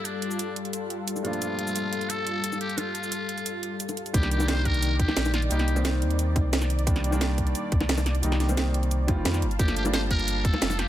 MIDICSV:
0, 0, Header, 1, 6, 480
1, 0, Start_track
1, 0, Key_signature, -3, "minor"
1, 0, Tempo, 340909
1, 72, Time_signature, 4, 2, 24, 8
1, 15323, End_track
2, 0, Start_track
2, 0, Title_t, "Analog synth pad"
2, 0, Program_c, 0, 89
2, 0, Note_on_c, 0, 55, 77
2, 0, Note_on_c, 0, 65, 70
2, 0, Note_on_c, 0, 69, 86
2, 5772, Note_off_c, 0, 69, 0
2, 5773, Note_off_c, 0, 55, 0
2, 5773, Note_off_c, 0, 65, 0
2, 5829, Note_on_c, 0, 74, 91
2, 5830, Note_on_c, 0, 51, 73
2, 13214, Note_off_c, 0, 51, 0
2, 13214, Note_off_c, 0, 74, 0
2, 13266, Note_on_c, 0, 81, 73
2, 13269, Note_on_c, 0, 77, 93
2, 15323, Note_off_c, 0, 77, 0
2, 15323, Note_off_c, 0, 81, 0
2, 15323, End_track
3, 0, Start_track
3, 0, Title_t, "Muted trumpet"
3, 0, Program_c, 1, 59
3, 68, Note_on_c, 1, 62, 85
3, 790, Note_off_c, 1, 62, 0
3, 1747, Note_on_c, 1, 65, 96
3, 2956, Note_on_c, 1, 69, 113
3, 2977, Note_off_c, 1, 65, 0
3, 3662, Note_off_c, 1, 69, 0
3, 3671, Note_on_c, 1, 67, 95
3, 3917, Note_on_c, 1, 65, 88
3, 3939, Note_off_c, 1, 67, 0
3, 5354, Note_off_c, 1, 65, 0
3, 5838, Note_on_c, 1, 67, 101
3, 6058, Note_off_c, 1, 67, 0
3, 6077, Note_on_c, 1, 67, 102
3, 6318, Note_on_c, 1, 72, 116
3, 6340, Note_off_c, 1, 67, 0
3, 6551, Note_on_c, 1, 70, 115
3, 6573, Note_off_c, 1, 72, 0
3, 7024, Note_off_c, 1, 70, 0
3, 7032, Note_on_c, 1, 67, 97
3, 7478, Note_off_c, 1, 67, 0
3, 7513, Note_on_c, 1, 65, 88
3, 7621, Note_off_c, 1, 65, 0
3, 7750, Note_on_c, 1, 67, 86
3, 8197, Note_off_c, 1, 67, 0
3, 13506, Note_on_c, 1, 67, 99
3, 13732, Note_off_c, 1, 67, 0
3, 13756, Note_on_c, 1, 67, 95
3, 13863, Note_off_c, 1, 67, 0
3, 13992, Note_on_c, 1, 72, 114
3, 14099, Note_off_c, 1, 72, 0
3, 14228, Note_on_c, 1, 70, 115
3, 14703, Note_on_c, 1, 69, 101
3, 14724, Note_off_c, 1, 70, 0
3, 15185, Note_on_c, 1, 67, 91
3, 15206, Note_off_c, 1, 69, 0
3, 15323, Note_off_c, 1, 67, 0
3, 15323, End_track
4, 0, Start_track
4, 0, Title_t, "Grand piano"
4, 0, Program_c, 2, 0
4, 0, Control_c, 2, 64, 127
4, 0, Note_on_c, 2, 43, 74
4, 0, Note_on_c, 2, 53, 68
4, 0, Note_on_c, 2, 57, 66
4, 0, Note_on_c, 2, 58, 71
4, 0, Note_on_c, 2, 62, 80
4, 1707, Note_off_c, 2, 43, 0
4, 1716, Note_off_c, 2, 53, 0
4, 1722, Note_off_c, 2, 57, 0
4, 1727, Note_off_c, 2, 58, 0
4, 1728, Note_on_c, 2, 43, 77
4, 1734, Note_off_c, 2, 62, 0
4, 1738, Note_on_c, 2, 53, 69
4, 1750, Note_on_c, 2, 57, 71
4, 1762, Note_on_c, 2, 58, 69
4, 1776, Note_on_c, 2, 62, 82
4, 5551, Note_off_c, 2, 43, 0
4, 5557, Note_off_c, 2, 53, 0
4, 5563, Note_off_c, 2, 57, 0
4, 5569, Note_off_c, 2, 58, 0
4, 5575, Note_off_c, 2, 62, 0
4, 5821, Note_on_c, 2, 51, 86
4, 5830, Note_on_c, 2, 55, 81
4, 5836, Note_on_c, 2, 58, 80
4, 5846, Note_on_c, 2, 62, 97
4, 5848, Control_c, 2, 64, 0
4, 6098, Control_c, 2, 64, 127
4, 6149, Note_off_c, 2, 51, 0
4, 6164, Note_off_c, 2, 55, 0
4, 6167, Note_off_c, 2, 58, 0
4, 6170, Note_on_c, 2, 51, 95
4, 6172, Note_off_c, 2, 62, 0
4, 6185, Note_on_c, 2, 55, 92
4, 6201, Note_on_c, 2, 58, 89
4, 6216, Note_on_c, 2, 62, 108
4, 7711, Note_off_c, 2, 51, 0
4, 7719, Note_off_c, 2, 55, 0
4, 7727, Note_off_c, 2, 58, 0
4, 7734, Note_off_c, 2, 62, 0
4, 7741, Note_on_c, 2, 51, 89
4, 7749, Note_on_c, 2, 55, 84
4, 7759, Note_on_c, 2, 58, 79
4, 7767, Note_on_c, 2, 63, 101
4, 8073, Note_off_c, 2, 51, 0
4, 8083, Note_off_c, 2, 55, 0
4, 8088, Note_off_c, 2, 58, 0
4, 8092, Note_off_c, 2, 63, 0
4, 8094, Note_on_c, 2, 51, 87
4, 8111, Note_on_c, 2, 55, 80
4, 8126, Note_on_c, 2, 58, 80
4, 8140, Note_on_c, 2, 60, 96
4, 9633, Note_off_c, 2, 51, 0
4, 9641, Note_off_c, 2, 55, 0
4, 9649, Note_off_c, 2, 58, 0
4, 9656, Note_off_c, 2, 60, 0
4, 9667, Note_on_c, 2, 51, 88
4, 9673, Note_on_c, 2, 55, 81
4, 9681, Note_on_c, 2, 58, 82
4, 9690, Note_on_c, 2, 62, 98
4, 9987, Note_off_c, 2, 51, 0
4, 10004, Note_off_c, 2, 55, 0
4, 10008, Note_on_c, 2, 51, 101
4, 10009, Note_off_c, 2, 58, 0
4, 10014, Note_off_c, 2, 62, 0
4, 10025, Note_on_c, 2, 55, 88
4, 10041, Note_on_c, 2, 58, 94
4, 10057, Note_on_c, 2, 62, 108
4, 11550, Note_off_c, 2, 51, 0
4, 11559, Note_off_c, 2, 55, 0
4, 11567, Note_off_c, 2, 58, 0
4, 11574, Note_off_c, 2, 62, 0
4, 11576, Note_on_c, 2, 51, 87
4, 11585, Note_on_c, 2, 55, 83
4, 11594, Note_on_c, 2, 58, 79
4, 11602, Note_on_c, 2, 63, 95
4, 11909, Note_off_c, 2, 51, 0
4, 11922, Note_off_c, 2, 55, 0
4, 11926, Note_off_c, 2, 58, 0
4, 11930, Note_off_c, 2, 63, 0
4, 11931, Note_on_c, 2, 51, 85
4, 11946, Note_on_c, 2, 55, 79
4, 11963, Note_on_c, 2, 58, 78
4, 11977, Note_on_c, 2, 60, 97
4, 12754, Note_off_c, 2, 51, 0
4, 12762, Note_off_c, 2, 55, 0
4, 12768, Note_off_c, 2, 58, 0
4, 12775, Note_on_c, 2, 51, 92
4, 12779, Note_off_c, 2, 60, 0
4, 12783, Note_on_c, 2, 55, 87
4, 12789, Note_on_c, 2, 58, 86
4, 12797, Note_on_c, 2, 65, 102
4, 12876, Note_off_c, 2, 51, 0
4, 12880, Note_off_c, 2, 55, 0
4, 12883, Note_off_c, 2, 58, 0
4, 12887, Note_off_c, 2, 65, 0
4, 12902, Note_on_c, 2, 51, 91
4, 12911, Note_on_c, 2, 55, 81
4, 12916, Note_on_c, 2, 58, 80
4, 12926, Note_on_c, 2, 65, 102
4, 13073, Note_off_c, 2, 51, 0
4, 13077, Note_off_c, 2, 55, 0
4, 13080, Note_off_c, 2, 58, 0
4, 13085, Note_off_c, 2, 65, 0
4, 13292, Control_c, 2, 64, 0
4, 13498, Note_on_c, 2, 53, 89
4, 13507, Note_on_c, 2, 57, 83
4, 13512, Note_on_c, 2, 58, 80
4, 13514, Control_c, 2, 64, 127
4, 13521, Note_on_c, 2, 62, 97
4, 13828, Note_off_c, 2, 53, 0
4, 13842, Note_off_c, 2, 57, 0
4, 13845, Note_off_c, 2, 58, 0
4, 13849, Note_on_c, 2, 53, 97
4, 13850, Note_off_c, 2, 62, 0
4, 13866, Note_on_c, 2, 55, 89
4, 13881, Note_on_c, 2, 58, 93
4, 13896, Note_on_c, 2, 62, 110
4, 15323, Note_off_c, 2, 53, 0
4, 15323, Note_off_c, 2, 55, 0
4, 15323, Note_off_c, 2, 58, 0
4, 15323, Note_off_c, 2, 62, 0
4, 15323, End_track
5, 0, Start_track
5, 0, Title_t, "Sub bass"
5, 0, Program_c, 3, 38
5, 5831, Note_on_c, 3, 36, 103
5, 7134, Note_off_c, 3, 36, 0
5, 7273, Note_on_c, 3, 34, 99
5, 7733, Note_off_c, 3, 34, 0
5, 7754, Note_on_c, 3, 36, 102
5, 8474, Note_on_c, 3, 39, 88
5, 8495, Note_off_c, 3, 36, 0
5, 8953, Note_on_c, 3, 36, 90
5, 8974, Note_off_c, 3, 39, 0
5, 10613, Note_off_c, 3, 36, 0
5, 10870, Note_on_c, 3, 36, 95
5, 11572, Note_off_c, 3, 36, 0
5, 11590, Note_on_c, 3, 36, 99
5, 12894, Note_off_c, 3, 36, 0
5, 12912, Note_on_c, 3, 31, 89
5, 13019, Note_off_c, 3, 31, 0
5, 13028, Note_on_c, 3, 41, 89
5, 13268, Note_on_c, 3, 31, 96
5, 13289, Note_off_c, 3, 41, 0
5, 13486, Note_off_c, 3, 31, 0
5, 13508, Note_on_c, 3, 31, 99
5, 14812, Note_off_c, 3, 31, 0
5, 14951, Note_on_c, 3, 29, 101
5, 15323, Note_off_c, 3, 29, 0
5, 15323, End_track
6, 0, Start_track
6, 0, Title_t, "Drums"
6, 71, Note_on_c, 9, 42, 83
6, 71, Note_on_c, 9, 82, 47
6, 212, Note_off_c, 9, 42, 0
6, 212, Note_off_c, 9, 82, 0
6, 312, Note_on_c, 9, 42, 63
6, 434, Note_on_c, 9, 82, 58
6, 453, Note_off_c, 9, 42, 0
6, 553, Note_off_c, 9, 82, 0
6, 553, Note_on_c, 9, 42, 88
6, 553, Note_on_c, 9, 82, 48
6, 694, Note_off_c, 9, 42, 0
6, 694, Note_off_c, 9, 82, 0
6, 793, Note_on_c, 9, 42, 62
6, 916, Note_off_c, 9, 42, 0
6, 916, Note_on_c, 9, 42, 36
6, 1032, Note_off_c, 9, 42, 0
6, 1032, Note_on_c, 9, 42, 83
6, 1032, Note_on_c, 9, 82, 49
6, 1173, Note_off_c, 9, 42, 0
6, 1173, Note_off_c, 9, 82, 0
6, 1271, Note_on_c, 9, 42, 61
6, 1412, Note_off_c, 9, 42, 0
6, 1514, Note_on_c, 9, 42, 92
6, 1514, Note_on_c, 9, 82, 50
6, 1633, Note_on_c, 9, 60, 52
6, 1636, Note_off_c, 9, 82, 0
6, 1636, Note_on_c, 9, 82, 57
6, 1655, Note_off_c, 9, 42, 0
6, 1755, Note_on_c, 9, 42, 59
6, 1774, Note_off_c, 9, 60, 0
6, 1776, Note_off_c, 9, 82, 0
6, 1876, Note_off_c, 9, 42, 0
6, 1876, Note_on_c, 9, 42, 35
6, 1996, Note_off_c, 9, 42, 0
6, 1996, Note_on_c, 9, 42, 89
6, 1996, Note_on_c, 9, 82, 49
6, 2136, Note_off_c, 9, 42, 0
6, 2136, Note_off_c, 9, 82, 0
6, 2234, Note_on_c, 9, 42, 67
6, 2355, Note_on_c, 9, 82, 59
6, 2375, Note_off_c, 9, 42, 0
6, 2473, Note_off_c, 9, 82, 0
6, 2473, Note_on_c, 9, 42, 90
6, 2473, Note_on_c, 9, 82, 49
6, 2614, Note_off_c, 9, 42, 0
6, 2614, Note_off_c, 9, 82, 0
6, 2712, Note_on_c, 9, 42, 67
6, 2834, Note_off_c, 9, 42, 0
6, 2834, Note_on_c, 9, 42, 38
6, 2954, Note_off_c, 9, 42, 0
6, 2954, Note_on_c, 9, 42, 93
6, 2954, Note_on_c, 9, 82, 50
6, 3095, Note_off_c, 9, 42, 0
6, 3095, Note_off_c, 9, 82, 0
6, 3191, Note_on_c, 9, 42, 65
6, 3332, Note_off_c, 9, 42, 0
6, 3432, Note_on_c, 9, 42, 94
6, 3432, Note_on_c, 9, 82, 52
6, 3554, Note_on_c, 9, 60, 57
6, 3555, Note_off_c, 9, 82, 0
6, 3555, Note_on_c, 9, 82, 58
6, 3573, Note_off_c, 9, 42, 0
6, 3672, Note_on_c, 9, 42, 64
6, 3695, Note_off_c, 9, 60, 0
6, 3696, Note_off_c, 9, 82, 0
6, 3795, Note_off_c, 9, 42, 0
6, 3795, Note_on_c, 9, 42, 37
6, 3907, Note_on_c, 9, 60, 77
6, 3911, Note_off_c, 9, 42, 0
6, 3911, Note_on_c, 9, 42, 91
6, 3911, Note_on_c, 9, 82, 50
6, 4048, Note_off_c, 9, 60, 0
6, 4052, Note_off_c, 9, 42, 0
6, 4052, Note_off_c, 9, 82, 0
6, 4151, Note_on_c, 9, 42, 68
6, 4151, Note_on_c, 9, 82, 28
6, 4272, Note_off_c, 9, 82, 0
6, 4272, Note_on_c, 9, 82, 58
6, 4292, Note_off_c, 9, 42, 0
6, 4391, Note_off_c, 9, 82, 0
6, 4391, Note_on_c, 9, 42, 94
6, 4391, Note_on_c, 9, 82, 49
6, 4531, Note_off_c, 9, 42, 0
6, 4531, Note_off_c, 9, 82, 0
6, 4631, Note_on_c, 9, 42, 69
6, 4754, Note_off_c, 9, 42, 0
6, 4754, Note_on_c, 9, 42, 39
6, 4754, Note_on_c, 9, 82, 29
6, 4871, Note_off_c, 9, 42, 0
6, 4871, Note_off_c, 9, 82, 0
6, 4871, Note_on_c, 9, 42, 94
6, 4871, Note_on_c, 9, 82, 46
6, 5012, Note_off_c, 9, 42, 0
6, 5012, Note_off_c, 9, 82, 0
6, 5110, Note_on_c, 9, 42, 67
6, 5251, Note_off_c, 9, 42, 0
6, 5349, Note_on_c, 9, 42, 94
6, 5349, Note_on_c, 9, 82, 51
6, 5475, Note_off_c, 9, 42, 0
6, 5475, Note_off_c, 9, 82, 0
6, 5475, Note_on_c, 9, 42, 37
6, 5475, Note_on_c, 9, 60, 58
6, 5475, Note_on_c, 9, 82, 59
6, 5592, Note_off_c, 9, 42, 0
6, 5592, Note_on_c, 9, 42, 64
6, 5616, Note_off_c, 9, 60, 0
6, 5616, Note_off_c, 9, 82, 0
6, 5716, Note_off_c, 9, 42, 0
6, 5716, Note_on_c, 9, 42, 37
6, 5716, Note_on_c, 9, 82, 28
6, 5831, Note_on_c, 9, 36, 120
6, 5834, Note_off_c, 9, 42, 0
6, 5834, Note_off_c, 9, 82, 0
6, 5834, Note_on_c, 9, 42, 96
6, 5834, Note_on_c, 9, 82, 51
6, 5956, Note_off_c, 9, 42, 0
6, 5956, Note_on_c, 9, 40, 52
6, 5956, Note_on_c, 9, 42, 40
6, 5972, Note_off_c, 9, 36, 0
6, 5975, Note_off_c, 9, 82, 0
6, 6075, Note_off_c, 9, 42, 0
6, 6075, Note_on_c, 9, 42, 73
6, 6075, Note_on_c, 9, 82, 27
6, 6097, Note_off_c, 9, 40, 0
6, 6195, Note_on_c, 9, 60, 85
6, 6196, Note_off_c, 9, 82, 0
6, 6196, Note_on_c, 9, 82, 61
6, 6215, Note_off_c, 9, 42, 0
6, 6313, Note_off_c, 9, 82, 0
6, 6313, Note_on_c, 9, 38, 120
6, 6313, Note_on_c, 9, 42, 98
6, 6313, Note_on_c, 9, 82, 51
6, 6335, Note_off_c, 9, 60, 0
6, 6454, Note_off_c, 9, 38, 0
6, 6454, Note_off_c, 9, 42, 0
6, 6454, Note_off_c, 9, 82, 0
6, 6552, Note_on_c, 9, 36, 61
6, 6553, Note_on_c, 9, 42, 70
6, 6678, Note_off_c, 9, 42, 0
6, 6678, Note_on_c, 9, 42, 40
6, 6693, Note_off_c, 9, 36, 0
6, 6794, Note_off_c, 9, 42, 0
6, 6794, Note_on_c, 9, 42, 92
6, 6794, Note_on_c, 9, 82, 49
6, 6935, Note_off_c, 9, 42, 0
6, 6935, Note_off_c, 9, 82, 0
6, 7032, Note_on_c, 9, 36, 103
6, 7035, Note_on_c, 9, 42, 70
6, 7157, Note_on_c, 9, 40, 36
6, 7160, Note_on_c, 9, 60, 98
6, 7173, Note_off_c, 9, 36, 0
6, 7175, Note_off_c, 9, 42, 0
6, 7273, Note_on_c, 9, 38, 123
6, 7273, Note_on_c, 9, 42, 98
6, 7273, Note_on_c, 9, 82, 52
6, 7298, Note_off_c, 9, 40, 0
6, 7301, Note_off_c, 9, 60, 0
6, 7395, Note_off_c, 9, 82, 0
6, 7395, Note_on_c, 9, 82, 59
6, 7403, Note_on_c, 9, 60, 96
6, 7414, Note_off_c, 9, 38, 0
6, 7414, Note_off_c, 9, 42, 0
6, 7514, Note_on_c, 9, 40, 51
6, 7514, Note_on_c, 9, 42, 70
6, 7536, Note_off_c, 9, 82, 0
6, 7544, Note_off_c, 9, 60, 0
6, 7636, Note_off_c, 9, 42, 0
6, 7636, Note_on_c, 9, 42, 39
6, 7655, Note_off_c, 9, 40, 0
6, 7754, Note_off_c, 9, 42, 0
6, 7754, Note_on_c, 9, 42, 95
6, 7754, Note_on_c, 9, 82, 47
6, 7877, Note_off_c, 9, 42, 0
6, 7877, Note_on_c, 9, 40, 51
6, 7877, Note_on_c, 9, 42, 38
6, 7895, Note_off_c, 9, 82, 0
6, 7995, Note_off_c, 9, 42, 0
6, 7995, Note_on_c, 9, 42, 69
6, 7995, Note_on_c, 9, 82, 27
6, 8018, Note_off_c, 9, 40, 0
6, 8113, Note_on_c, 9, 60, 100
6, 8117, Note_off_c, 9, 82, 0
6, 8117, Note_on_c, 9, 82, 59
6, 8136, Note_off_c, 9, 42, 0
6, 8235, Note_off_c, 9, 82, 0
6, 8235, Note_on_c, 9, 38, 123
6, 8235, Note_on_c, 9, 42, 92
6, 8235, Note_on_c, 9, 82, 47
6, 8254, Note_off_c, 9, 60, 0
6, 8375, Note_off_c, 9, 38, 0
6, 8375, Note_off_c, 9, 42, 0
6, 8375, Note_off_c, 9, 82, 0
6, 8476, Note_on_c, 9, 42, 71
6, 8596, Note_off_c, 9, 42, 0
6, 8596, Note_on_c, 9, 42, 39
6, 8715, Note_off_c, 9, 42, 0
6, 8715, Note_on_c, 9, 42, 91
6, 8715, Note_on_c, 9, 82, 49
6, 8856, Note_off_c, 9, 42, 0
6, 8856, Note_off_c, 9, 82, 0
6, 8952, Note_on_c, 9, 36, 110
6, 8954, Note_on_c, 9, 42, 68
6, 8956, Note_on_c, 9, 60, 98
6, 9093, Note_off_c, 9, 36, 0
6, 9095, Note_off_c, 9, 42, 0
6, 9097, Note_off_c, 9, 60, 0
6, 9194, Note_on_c, 9, 38, 127
6, 9194, Note_on_c, 9, 42, 97
6, 9194, Note_on_c, 9, 82, 49
6, 9315, Note_off_c, 9, 82, 0
6, 9315, Note_on_c, 9, 40, 38
6, 9315, Note_on_c, 9, 82, 58
6, 9334, Note_off_c, 9, 38, 0
6, 9334, Note_off_c, 9, 42, 0
6, 9434, Note_on_c, 9, 42, 68
6, 9456, Note_off_c, 9, 40, 0
6, 9456, Note_off_c, 9, 82, 0
6, 9556, Note_off_c, 9, 42, 0
6, 9556, Note_on_c, 9, 42, 38
6, 9671, Note_on_c, 9, 36, 127
6, 9675, Note_off_c, 9, 42, 0
6, 9675, Note_on_c, 9, 42, 90
6, 9675, Note_on_c, 9, 82, 48
6, 9797, Note_off_c, 9, 42, 0
6, 9797, Note_on_c, 9, 40, 51
6, 9797, Note_on_c, 9, 42, 39
6, 9812, Note_off_c, 9, 36, 0
6, 9815, Note_off_c, 9, 82, 0
6, 9915, Note_off_c, 9, 42, 0
6, 9915, Note_on_c, 9, 42, 67
6, 9915, Note_on_c, 9, 82, 28
6, 9938, Note_off_c, 9, 40, 0
6, 10030, Note_on_c, 9, 60, 95
6, 10036, Note_off_c, 9, 82, 0
6, 10036, Note_on_c, 9, 82, 57
6, 10056, Note_off_c, 9, 42, 0
6, 10153, Note_off_c, 9, 82, 0
6, 10153, Note_on_c, 9, 38, 126
6, 10153, Note_on_c, 9, 42, 89
6, 10153, Note_on_c, 9, 82, 47
6, 10171, Note_off_c, 9, 60, 0
6, 10293, Note_off_c, 9, 38, 0
6, 10293, Note_off_c, 9, 42, 0
6, 10293, Note_off_c, 9, 82, 0
6, 10390, Note_on_c, 9, 36, 66
6, 10392, Note_on_c, 9, 42, 66
6, 10513, Note_off_c, 9, 42, 0
6, 10513, Note_on_c, 9, 42, 38
6, 10531, Note_off_c, 9, 36, 0
6, 10631, Note_off_c, 9, 42, 0
6, 10631, Note_on_c, 9, 42, 88
6, 10631, Note_on_c, 9, 82, 48
6, 10772, Note_off_c, 9, 42, 0
6, 10772, Note_off_c, 9, 82, 0
6, 10869, Note_on_c, 9, 42, 63
6, 10870, Note_on_c, 9, 36, 115
6, 10990, Note_on_c, 9, 60, 105
6, 10993, Note_on_c, 9, 40, 36
6, 11010, Note_off_c, 9, 42, 0
6, 11011, Note_off_c, 9, 36, 0
6, 11111, Note_on_c, 9, 38, 127
6, 11111, Note_on_c, 9, 42, 93
6, 11111, Note_on_c, 9, 82, 50
6, 11131, Note_off_c, 9, 60, 0
6, 11133, Note_off_c, 9, 40, 0
6, 11230, Note_on_c, 9, 60, 105
6, 11233, Note_off_c, 9, 82, 0
6, 11233, Note_on_c, 9, 82, 57
6, 11252, Note_off_c, 9, 38, 0
6, 11252, Note_off_c, 9, 42, 0
6, 11349, Note_on_c, 9, 40, 49
6, 11349, Note_on_c, 9, 42, 64
6, 11370, Note_off_c, 9, 60, 0
6, 11373, Note_off_c, 9, 82, 0
6, 11471, Note_off_c, 9, 42, 0
6, 11471, Note_on_c, 9, 42, 35
6, 11490, Note_off_c, 9, 40, 0
6, 11589, Note_off_c, 9, 42, 0
6, 11589, Note_on_c, 9, 42, 91
6, 11589, Note_on_c, 9, 82, 47
6, 11715, Note_off_c, 9, 42, 0
6, 11715, Note_on_c, 9, 40, 49
6, 11715, Note_on_c, 9, 42, 35
6, 11730, Note_off_c, 9, 82, 0
6, 11830, Note_off_c, 9, 42, 0
6, 11830, Note_on_c, 9, 38, 39
6, 11830, Note_on_c, 9, 42, 66
6, 11830, Note_on_c, 9, 82, 28
6, 11855, Note_off_c, 9, 40, 0
6, 11953, Note_off_c, 9, 82, 0
6, 11953, Note_on_c, 9, 60, 95
6, 11953, Note_on_c, 9, 82, 59
6, 11971, Note_off_c, 9, 38, 0
6, 11971, Note_off_c, 9, 42, 0
6, 12072, Note_off_c, 9, 82, 0
6, 12072, Note_on_c, 9, 38, 123
6, 12072, Note_on_c, 9, 42, 87
6, 12072, Note_on_c, 9, 82, 50
6, 12093, Note_off_c, 9, 60, 0
6, 12213, Note_off_c, 9, 38, 0
6, 12213, Note_off_c, 9, 42, 0
6, 12213, Note_off_c, 9, 82, 0
6, 12311, Note_on_c, 9, 42, 63
6, 12432, Note_off_c, 9, 42, 0
6, 12432, Note_on_c, 9, 42, 36
6, 12549, Note_off_c, 9, 42, 0
6, 12549, Note_on_c, 9, 42, 86
6, 12549, Note_on_c, 9, 82, 48
6, 12690, Note_off_c, 9, 42, 0
6, 12690, Note_off_c, 9, 82, 0
6, 12787, Note_on_c, 9, 42, 66
6, 12788, Note_on_c, 9, 36, 110
6, 12789, Note_on_c, 9, 60, 101
6, 12928, Note_off_c, 9, 42, 0
6, 12929, Note_off_c, 9, 36, 0
6, 12930, Note_off_c, 9, 60, 0
6, 13029, Note_on_c, 9, 38, 127
6, 13029, Note_on_c, 9, 42, 91
6, 13029, Note_on_c, 9, 82, 49
6, 13150, Note_off_c, 9, 82, 0
6, 13150, Note_on_c, 9, 40, 36
6, 13150, Note_on_c, 9, 82, 57
6, 13169, Note_off_c, 9, 38, 0
6, 13169, Note_off_c, 9, 42, 0
6, 13267, Note_on_c, 9, 42, 62
6, 13291, Note_off_c, 9, 40, 0
6, 13291, Note_off_c, 9, 82, 0
6, 13391, Note_off_c, 9, 42, 0
6, 13391, Note_on_c, 9, 42, 35
6, 13391, Note_on_c, 9, 82, 28
6, 13508, Note_on_c, 9, 36, 125
6, 13509, Note_off_c, 9, 42, 0
6, 13509, Note_off_c, 9, 82, 0
6, 13509, Note_on_c, 9, 42, 92
6, 13509, Note_on_c, 9, 82, 51
6, 13631, Note_off_c, 9, 42, 0
6, 13631, Note_on_c, 9, 40, 48
6, 13631, Note_on_c, 9, 42, 37
6, 13649, Note_off_c, 9, 36, 0
6, 13649, Note_off_c, 9, 82, 0
6, 13749, Note_off_c, 9, 42, 0
6, 13749, Note_on_c, 9, 42, 65
6, 13749, Note_on_c, 9, 82, 28
6, 13772, Note_off_c, 9, 40, 0
6, 13870, Note_off_c, 9, 82, 0
6, 13870, Note_on_c, 9, 82, 59
6, 13874, Note_on_c, 9, 60, 100
6, 13890, Note_off_c, 9, 42, 0
6, 13989, Note_off_c, 9, 82, 0
6, 13989, Note_on_c, 9, 38, 119
6, 13989, Note_on_c, 9, 42, 89
6, 13989, Note_on_c, 9, 82, 49
6, 14015, Note_off_c, 9, 60, 0
6, 14130, Note_off_c, 9, 38, 0
6, 14130, Note_off_c, 9, 42, 0
6, 14130, Note_off_c, 9, 82, 0
6, 14229, Note_on_c, 9, 36, 63
6, 14229, Note_on_c, 9, 42, 64
6, 14355, Note_off_c, 9, 42, 0
6, 14355, Note_on_c, 9, 42, 37
6, 14370, Note_off_c, 9, 36, 0
6, 14472, Note_off_c, 9, 42, 0
6, 14472, Note_on_c, 9, 42, 92
6, 14472, Note_on_c, 9, 82, 50
6, 14613, Note_off_c, 9, 42, 0
6, 14613, Note_off_c, 9, 82, 0
6, 14710, Note_on_c, 9, 36, 108
6, 14711, Note_on_c, 9, 42, 65
6, 14833, Note_on_c, 9, 40, 31
6, 14834, Note_on_c, 9, 60, 102
6, 14851, Note_off_c, 9, 36, 0
6, 14852, Note_off_c, 9, 42, 0
6, 14950, Note_on_c, 9, 38, 120
6, 14950, Note_on_c, 9, 42, 93
6, 14950, Note_on_c, 9, 82, 52
6, 14974, Note_off_c, 9, 40, 0
6, 14975, Note_off_c, 9, 60, 0
6, 15064, Note_on_c, 9, 60, 96
6, 15074, Note_off_c, 9, 82, 0
6, 15074, Note_on_c, 9, 82, 58
6, 15091, Note_off_c, 9, 38, 0
6, 15091, Note_off_c, 9, 42, 0
6, 15191, Note_on_c, 9, 40, 46
6, 15191, Note_on_c, 9, 42, 65
6, 15205, Note_off_c, 9, 60, 0
6, 15215, Note_off_c, 9, 82, 0
6, 15323, Note_off_c, 9, 40, 0
6, 15323, Note_off_c, 9, 42, 0
6, 15323, End_track
0, 0, End_of_file